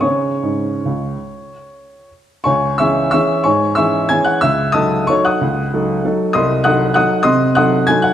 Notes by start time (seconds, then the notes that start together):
0.01 C#3 C#4 G#4 C#5 C#6
0.43 G#2
0.85 C#2
2.44 C#2 C#5 G#5 C#6
2.78 E3 C#4 G#4 E5 C#6 E6
3.11 E3 C#4 G#4 E5 C#6 E6
3.44 G#2 C#5 G#5 C#6
3.75 E3 C#4 G#4 E5 C#6 E6
4.09 E3 C#4 G#4 G#5 G#6
4.25 F#5 F#6
4.41 C#2 E5 E6
4.72 F#3 D#4 A4 D#5 A5 D#6
5.07 F#3 D#4 A4 C#5 C#6
5.25 F#5 D#6 F#6
5.41 C#2
5.74 F#3 D#4 A4
6.04 F#3 D#4 A4
6.33 C2 D#5 C6 D#6
6.64 F#3 D#4 A4 F#5 D#6 F#6
6.94 F#3 D#4 A4 F#5 D#6 F#6
7.23 C3 D#5 C6 D#6
7.55 F#3 D#4 A4 F#5 D#6 F#6
7.87 F#3 D#4 A4 G#5 G#6
8.02 F#5 F#6